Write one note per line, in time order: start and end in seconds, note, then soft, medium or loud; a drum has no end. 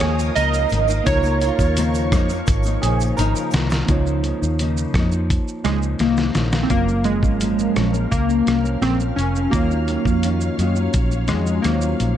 0.00 0.29 D#2 medium
0.00 0.34 C#3 medium
0.00 0.34 F3 medium
0.00 1.01 A#3 medium
0.00 0.35 A#3 medium
0.00 1.02 D#4 medium
0.00 0.36 D#4 medium
0.00 1.03 F4 medium
0.00 0.16 G#4 medium
0.00 3.85 A#4 medium
0.00 0.32 C#5 loud
0.00 1.04 C#5 medium
0.00 3.85 F5 medium
0.00 1.04 D#6 medium
0.00 cross-stick loud
0.00 closed hi-hat medium
0.00 shaker medium
0.19 shaker soft
0.35 0.65 C#2 loud
0.35 0.69 C#3 medium
0.35 0.70 F3 medium
0.35 0.71 A#3 medium
0.35 0.72 D#4 medium
0.35 0.86 A#4 medium
0.35 1.02 D#5 loud
0.35 closed hi-hat medium
0.35 shaker medium
0.54 shaker soft
0.54 shaker medium
0.69 1.00 G#1 medium
0.69 0.88 C#3 medium
0.69 0.89 F3 medium
0.69 0.89 A#3 medium
0.69 closed hi-hat medium
0.69 shaker soft
0.72 0.87 D#4 medium
0.72 shaker soft
0.88 1.06 A#3 medium
0.88 1.06 D#4 soft
0.88 shaker medium
0.90 1.06 F3 soft
0.90 shaker medium
1.04 1.49 C#2 loud
1.04 1.24 C#3 medium
1.04 1.25 F3 medium
1.04 3.83 A#3 medium
1.04 1.24 A#3 medium
1.04 3.84 D#4 medium
1.04 3.85 F4 medium
1.04 1.41 A#4 medium
1.04 3.14 C#5 loud
1.04 3.86 C#6 medium
1.04 kick loud
1.04 closed hi-hat medium
1.04 shaker medium
1.08 1.22 D#4 medium
1.08 3.86 C#5 medium
1.23 1.77 A#3 soft
1.23 1.77 D#4 soft
1.23 shaker soft
1.25 1.76 F3 soft
1.25 shaker soft
1.41 2.09 F4 medium
1.41 closed hi-hat soft
1.41 shaker soft
1.59 2.12 D#2 medium
1.59 kick medium
1.59 shaker soft
1.59 shaker medium
1.76 2.10 C#3 medium
1.76 2.12 F3 medium
1.76 2.13 A#3 medium
1.76 2.13 D#4 loud
1.76 closed hi-hat medium
1.76 shaker medium
1.94 shaker medium
2.12 2.41 F2 loud
2.12 2.30 C#3 medium
2.12 2.30 F3 medium
2.12 2.31 A#3 medium
2.12 2.29 D#4 medium
2.12 kick loud
2.12 cross-stick medium
2.12 closed hi-hat soft
2.12 shaker medium
2.12 shaker soft
2.29 2.66 A#3 medium
2.29 2.64 D#4 medium
2.29 shaker medium
2.29 shaker soft
2.34 2.67 F3 soft
2.47 2.76 G#1 medium
2.47 kick medium
2.47 closed hi-hat medium
2.47 shaker medium
2.63 2.83 D#4 medium
2.63 shaker soft
2.66 2.83 F3 soft
2.66 2.84 A#3 soft
2.66 shaker medium
2.82 3.11 A#1 medium
2.82 3.16 C#3 medium
2.82 3.17 F3 medium
2.82 3.18 A#3 medium
2.82 2.99 G#4 medium
2.82 closed hi-hat medium
2.82 shaker medium
2.86 3.19 D#4 medium
3.00 shaker soft
3.00 shaker medium
3.17 3.32 G#1 medium
3.17 3.51 C#3 medium
3.17 3.53 F3 loud
3.17 3.54 A#3 medium
3.17 3.54 D#4 loud
3.17 3.67 A#4 medium
3.17 closed hi-hat medium
3.17 shaker medium
3.35 shaker soft
3.35 shaker medium
3.51 3.82 C2 medium
3.51 3.71 C#3 medium
3.51 closed hi-hat medium
3.51 shaker soft
3.54 3.71 F3 medium
3.54 3.70 A#3 medium
3.54 3.68 D#4 medium
3.54 snare loud
3.54 shaker medium
3.69 3.88 F3 soft
3.69 3.89 A#3 soft
3.69 3.88 D#4 medium
3.69 snare loud
3.69 shaker soft
3.69 shaker medium
3.86 4.31 C#2 loud
3.86 4.22 C#3 medium
3.86 4.24 F3 medium
3.86 6.66 A#3 medium
3.86 4.25 A#3 medium
3.86 6.67 D#4 medium
3.86 6.68 F4 medium
3.86 kick loud
3.86 closed hi-hat medium
3.86 shaker medium
3.91 4.25 D#4 loud
3.91 6.69 C#5 medium
4.06 shaker soft
4.23 4.41 C#3 medium
4.23 4.42 F3 medium
4.23 4.42 A#3 medium
4.23 4.40 D#4 medium
4.23 closed hi-hat soft
4.23 shaker soft
4.41 4.84 D#2 medium
4.41 4.59 F3 medium
4.41 4.60 A#3 medium
4.41 4.59 D#4 medium
4.41 shaker medium
4.59 4.93 C#3 medium
4.59 4.95 F3 medium
4.59 4.96 A#3 loud
4.59 4.96 D#4 medium
4.59 closed hi-hat medium
4.59 shaker medium
4.77 shaker medium
4.94 5.37 F2 medium
4.94 5.12 C#3 medium
4.94 5.13 F3 medium
4.94 5.13 A#3 medium
4.94 kick medium
4.94 cross-stick medium
4.94 closed hi-hat soft
4.94 shaker soft
4.98 5.11 D#4 medium
5.12 5.66 A#3 medium
5.12 5.65 D#4 medium
5.12 shaker soft
5.16 5.65 F3 soft
5.30 kick medium
5.30 closed hi-hat medium
5.30 shaker medium
5.48 shaker soft
5.64 5.93 C#2 medium
5.64 6.00 C#3 medium
5.64 6.00 F3 medium
5.64 5.78 G#3 medium
5.64 6.01 A#3 medium
5.64 cross-stick medium
5.64 closed hi-hat medium
5.64 shaker medium
5.69 6.02 D#4 medium
5.82 shaker soft
5.99 6.29 C2 medium
5.99 6.35 F3 medium
5.99 6.66 A#3 medium
5.99 6.37 A#3 medium
5.99 6.37 D#4 medium
5.99 snare soft
5.99 closed hi-hat medium
5.99 shaker medium
6.17 snare medium
6.17 shaker soft
6.35 6.64 A#1 medium
6.35 6.53 C#3 medium
6.35 6.54 F3 medium
6.35 6.53 A#3 medium
6.35 6.52 D#4 medium
6.35 snare medium
6.35 closed hi-hat medium
6.35 shaker soft
6.52 6.71 A#3 soft
6.52 6.71 D#4 medium
6.52 snare medium
6.52 shaker soft
6.57 6.69 F3 soft
6.63 6.71 C4 medium
6.69 7.23 F#1 medium
6.69 6.88 F#2 medium
6.69 6.89 F3 medium
6.69 9.50 F#3 medium
6.69 9.48 A#3 medium
6.69 7.04 A#3 loud
6.69 6.88 A#3 medium
6.69 6.86 C#4 medium
6.69 9.49 F4 medium
6.69 9.50 A#4 medium
6.69 12.17 F5 medium
6.69 12.17 F6 medium
6.69 kick loud
6.69 closed hi-hat medium
6.69 shaker medium
6.73 9.50 A#4 medium
6.87 7.05 F3 soft
6.87 7.06 A#3 soft
6.87 7.06 C#4 soft
6.87 shaker soft
7.04 7.23 F#2 soft
7.04 7.24 F3 medium
7.04 8.15 G#3 medium
7.04 7.22 A#3 medium
7.04 closed hi-hat soft
7.04 shaker soft
7.08 7.21 C#4 medium
7.22 7.66 G#1 medium
7.22 7.41 F3 soft
7.22 7.41 A#3 soft
7.22 7.41 C#4 soft
7.22 kick medium
7.22 shaker medium
7.41 7.74 F#2 medium
7.41 7.76 F3 medium
7.41 7.77 A#3 medium
7.41 7.78 C#4 medium
7.41 closed hi-hat medium
7.41 shaker medium
7.59 shaker medium
7.75 8.05 A#1 medium
7.75 7.94 F#2 medium
7.75 7.95 F3 medium
7.75 7.94 A#3 medium
7.75 7.91 C#4 medium
7.75 cross-stick medium
7.75 closed hi-hat soft
7.75 shaker soft
7.93 8.30 A#3 soft
7.93 8.27 C#4 medium
7.93 shaker soft
7.97 8.31 F3 soft
8.11 8.41 C#2 medium
8.11 8.85 A#3 loud
8.11 kick medium
8.11 closed hi-hat medium
8.11 shaker medium
8.28 8.45 F3 soft
8.28 8.46 A#3 soft
8.28 8.47 C#4 soft
8.28 shaker soft
8.45 8.76 C2 medium
8.45 8.64 F#2 medium
8.45 8.65 F3 medium
8.45 8.65 A#3 medium
8.45 8.62 C#4 medium
8.45 cross-stick medium
8.45 closed hi-hat medium
8.45 shaker medium
8.63 8.81 F3 soft
8.63 8.81 A#3 soft
8.63 8.82 C#4 medium
8.63 shaker soft
8.81 9.10 A#1 medium
8.81 9.00 F#2 medium
8.81 9.00 F3 medium
8.81 9.00 A#3 medium
8.81 8.96 C4 loud
8.81 8.98 C#4 medium
8.81 cross-stick medium
8.81 closed hi-hat medium
8.81 shaker medium
8.99 9.54 A#3 soft
8.99 9.53 C#4 soft
8.99 shaker soft
9.03 9.53 F3 soft
9.16 9.46 F1 medium
9.16 9.50 C#4 medium
9.16 closed hi-hat soft
9.16 shaker soft
9.36 shaker medium
9.50 9.96 D#2 loud
9.50 9.71 D#3 medium
9.50 9.71 F#3 medium
9.50 11.25 A#3 loud
9.50 9.70 C#4 medium
9.50 11.61 D#4 medium
9.50 11.61 F4 medium
9.50 11.60 F#4 medium
9.50 12.17 C#5 medium
9.50 kick loud
9.50 closed hi-hat medium
9.50 shaker medium
9.55 9.69 F4 medium
9.55 11.62 C#5 medium
9.70 9.88 F#3 soft
9.70 9.89 C#4 soft
9.70 9.88 F4 soft
9.70 shaker soft
9.88 10.06 D#3 soft
9.88 10.07 F#3 soft
9.88 10.06 C#4 medium
9.88 10.04 F4 medium
9.88 closed hi-hat soft
9.88 shaker soft
10.05 10.48 F2 medium
10.05 10.25 F#3 soft
10.05 10.23 C#4 soft
10.05 10.24 F4 medium
10.05 kick medium
10.05 shaker medium
10.23 10.58 D#3 medium
10.23 10.60 C#4 medium
10.23 10.60 F4 medium
10.23 closed hi-hat medium
10.23 shaker medium
10.41 shaker medium
10.59 10.87 F#2 medium
10.59 10.77 D#3 medium
10.59 10.77 F#3 medium
10.59 10.77 C#4 medium
10.59 10.75 F4 medium
10.59 closed hi-hat soft
10.59 shaker soft
10.76 11.12 C#4 soft
10.76 11.10 F4 medium
10.76 shaker soft
10.80 11.14 F#3 soft
10.94 11.32 A#1 loud
10.94 kick medium
10.94 closed hi-hat medium
10.94 shaker medium
11.11 11.29 F#3 soft
11.11 11.30 C#4 soft
11.11 11.29 F4 soft
11.11 shaker medium
11.28 11.58 F2 medium
11.28 11.47 D#3 medium
11.28 11.48 F#3 medium
11.28 11.65 G#3 medium
11.28 11.48 C#4 medium
11.28 cross-stick medium
11.28 closed hi-hat medium
11.28 shaker medium
11.32 11.46 F4 medium
11.46 11.64 F#3 soft
11.46 11.64 C#4 medium
11.46 11.65 F4 medium
11.46 shaker soft
11.62 11.93 D#2 medium
11.62 11.82 D#3 medium
11.62 12.17 F#3 soft
11.62 11.83 F#3 medium
11.62 12.17 A#3 medium
11.62 11.83 C#4 medium
11.62 12.17 D#4 soft
11.62 12.17 F4 soft
11.62 cross-stick medium
11.62 closed hi-hat medium
11.62 shaker medium
11.66 11.81 F4 medium
11.66 11.72 C5 soft
11.73 12.17 C#5 medium
11.81 12.17 C#4 soft
11.81 12.17 F4 medium
11.81 shaker medium
11.86 12.17 F#3 soft
12.00 12.17 A#1 medium
12.00 closed hi-hat medium
12.00 shaker soft